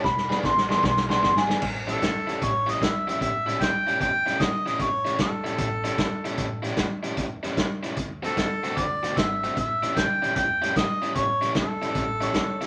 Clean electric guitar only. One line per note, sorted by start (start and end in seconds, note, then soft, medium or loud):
0.04 0.30 B5 medium
0.46 0.58 C6 loud
0.70 0.83 C6 medium
0.84 0.96 C6 loud
1.10 1.23 C6 loud
1.25 1.37 C6 medium
1.37 1.62 G#5 loud
12.23 12.67 C#5 medium